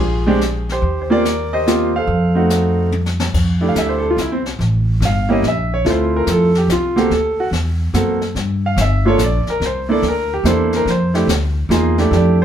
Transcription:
Already playing: A#1 F4 G#4
0.27 G#3 C4 D4 G4
0.41 snare, hi-hat pedal
0.69 G4 C5, snare
0.82 D#2, brush sweep
1.02 C5
1.10 A#3 C4 F4 G4 A#4 D5
1.25 snare, hi-hat pedal
1.53 G4 C5 D#5
1.67 A#3 C4 F4 G4, snare, hi-hat pedal
1.96 A4 C5 F5
2.07 F2, brush sweep
2.35 A3 C4 D#4 F#4
2.50 snare, hi-hat pedal
2.92 high tom
3.06 snare
3.20 snare
3.34 F2, brush sweep, kick, snare, crash
3.61 A3 D4 E4 G4
3.69 F5
3.75 D2 E5, snare, hi-hat pedal
3.89 C5
3.98 A4
4.10 F4
4.17 C2, snare, hi-hat pedal
4.21 E4
4.32 C4
4.46 snare
4.59 A1, brush sweep, snare
5.00 G1, snare, hi-hat pedal
5.05 F5
5.29 A#3 C#4 E4 G4 D#5
5.42 A#1, snare
5.48 E5
5.74 C#5
5.85 D2 A3 C4 E4 F4, brush sweep, snare
5.90 C5
6.16 A#4
6.27 F2, snare, hi-hat pedal
6.32 A4
6.55 G4, snare
6.68 C2 F4, snare, hi-hat pedal
6.96 A#3 C4 F#4 G4 A4, snare
7.10 D2 A4, brush sweep, snare
7.40 F#4
7.51 E2, snare
7.93 F#2 A#3 C4 F#4 A4, snare, hi-hat pedal
8.21 snare
8.35 G2, brush sweep, snare
8.66 F5
8.76 G1, snare, hi-hat pedal
8.81 E5
9.05 A#3 D4 F4 A4 C#5
9.18 A#1, snare, hi-hat pedal
9.24 D5
9.47 A#4, snare
9.60 C2, brush sweep, snare
9.66 C5
9.89 A#3 D4 E4 A4 D5
10.02 D2, snare
10.08 A#4
10.34 G4
10.44 E2 A#3 D4 E4 C5, snare, hi-hat pedal
10.49 A4
10.73 A#4, snare
10.86 F2, brush sweep, snare
10.91 C5
11.14 A3 D4 E4 G4, snare
11.27 D2, snare, hi-hat pedal
11.69 E2 A#3 D#4 F4 G#4, snare, hi-hat pedal
11.98 A3 D4 E4 G4, snare
12.11 F2 A3 D4 E4 G4, brush sweep, snare
12.16 D5

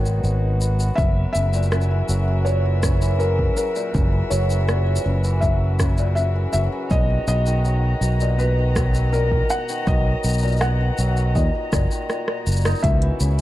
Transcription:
Already playing: G#1 D#3 F#3 G#3 D#4 F#4 B4
0.05 B2, shaker
0.24 G#1 B2, shaker
0.61 B3, shaker
0.80 B3, shaker
0.95 F#1 F#3 A#4 E5, kick, shaker
1.33 F#1 C#3 E5, shaker
1.53 A#2, shaker
1.63 shaker
1.72 C#3, cross-stick, shaker
1.81 shaker
1.91 E3
2.09 F#1 F#3, shaker
2.28 E3
2.45 A#2 C#5, shaker
2.65 E3
2.83 C#3, kick, cross-stick, shaker
3.02 E3, shaker
3.19 F#3 A#4, shaker
3.39 kick
3.57 C#3 A#4, shaker
3.76 A#2, shaker
3.94 F#1 C#3, kick, shaker
4.12 E3
4.30 F#1 F#3 C#5, shaker
4.50 E3, shaker
4.68 A#2, cross-stick, shaker
4.86 E3
4.96 shaker
5.05 F#1 C#3
5.24 E3, shaker
5.41 F#3 E5, kick, shaker
5.79 C#3, kick, cross-stick, shaker
5.98 A#2, shaker
6.15 C#3 E5, shaker
6.36 E3
6.53 F#1 F#3 E5, shaker
6.72 E3
6.91 B1 A#2 D#5 A#5, kick, shaker
7.10 D#3
7.27 B1 B2 D#5, shaker
7.46 D#3, shaker
7.65 F#3, shaker
8.01 B1 B2, shaker
8.20 A#2, shaker
8.39 B2 B4, shaker
8.59 D#3
8.76 F#3, kick, cross-stick, shaker
8.94 D#3, shaker
9.13 A#2 A#4, shaker
9.32 D#3, kick
9.50 B2 F#5, shaker
9.69 D#3, shaker
9.87 B1 F#3 D#5, kick, shaker
10.24 B1 B2, shaker
10.29 shaker
10.33 shaker
10.38 shaker
10.42 A#2, shaker
10.47 shaker
10.52 shaker
10.56 shaker
10.61 B2 F#5, cross-stick, shaker
10.81 D#3
10.98 B1 F#3, shaker
11.17 D#3, shaker
11.35 D#2 A#2 D#5, kick, shaker
11.55 D#3
11.73 F#1 A#2, kick, cross-stick, shaker
11.91 D#3, shaker
12.10 A#2, cross-stick, shaker
12.28 A#2, cross-stick
12.47 F#1 A#3, shaker
12.52 shaker
12.56 shaker
12.61 shaker
12.65 D#4, cross-stick, shaker
12.70 shaker
12.75 shaker
12.79 E5, shaker
12.84 C#2 B2 C#3 C#4 E4 B4, kick, closed hi-hat, shaker
13.02 E3, closed hi-hat
13.20 C#2 C#3, shaker

